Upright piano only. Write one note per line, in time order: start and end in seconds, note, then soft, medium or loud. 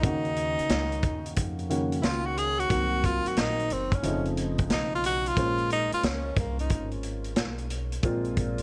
0.02 1.67 C#3 medium
0.02 1.66 D#3 medium
0.02 1.67 A#3 medium
0.02 1.68 C#4 medium
0.02 1.68 F#4 medium
1.70 2.70 C#3 medium
1.70 2.67 D#3 medium
1.70 2.69 A#3 medium
1.70 2.70 C#4 medium
1.70 2.70 F#4 medium
2.69 4.00 D#3 medium
2.69 4.01 F#3 medium
2.69 4.01 A#3 medium
2.69 4.01 C4 medium
2.69 4.01 F#4 medium
4.03 5.34 C#3 medium
4.03 5.34 F3 medium
4.03 5.34 A3 medium
4.03 5.35 C4 medium
4.03 5.35 D#4 medium
5.36 8.00 G#3 medium
5.36 8.00 A#3 medium
5.36 7.99 C#4 medium
5.36 8.01 F4 medium
5.36 8.00 C5 medium
8.03 8.62 A#2 medium
8.03 8.62 G#3 medium
8.03 8.62 A#3 medium
8.03 8.62 C4 medium
8.03 8.62 F4 medium